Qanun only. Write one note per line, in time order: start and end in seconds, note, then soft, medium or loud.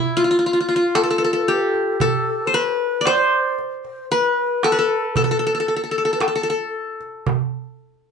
0.00 0.23 E4 medium
0.17 0.24 F4 medium
0.24 0.30 F4 medium
0.31 0.38 F4 medium
0.39 0.46 F4 medium
0.46 0.53 F4 medium
0.53 0.60 F4 soft
0.61 0.68 F4 medium
0.69 0.76 F4 medium
0.76 2.11 F4 medium
0.95 1.03 A4 medium
1.03 1.10 A4 medium
1.10 1.18 A4 medium
1.18 1.24 A4 medium
1.24 1.33 A4 medium
1.33 2.01 A4 medium
1.48 2.74 G4 medium
2.01 3.18 A4 medium
2.47 2.60 C5 medium
2.54 3.13 B4 medium
3.01 4.00 D5 medium
3.07 4.18 C5 loud
4.12 4.72 B4 medium
4.64 4.78 A4 medium
4.72 5.82 B4 medium
4.79 5.16 A4 medium
5.17 5.24 A4 medium
5.24 5.31 A4 medium
5.31 5.39 A4 medium
5.39 5.46 A4 medium
5.47 5.54 A4 medium
5.55 5.60 A4 medium
5.60 5.68 A4 medium
5.68 5.76 A4 soft
5.76 5.83 A4 medium
5.84 5.91 A4 soft
5.91 5.98 A4 medium
5.98 6.05 A4 soft
6.05 6.12 A4 medium
6.13 6.20 A4 medium
6.20 6.27 A4 medium
6.28 6.35 A4 medium
6.35 6.43 A4 medium
6.43 6.49 A4 medium
6.50 7.67 A4 medium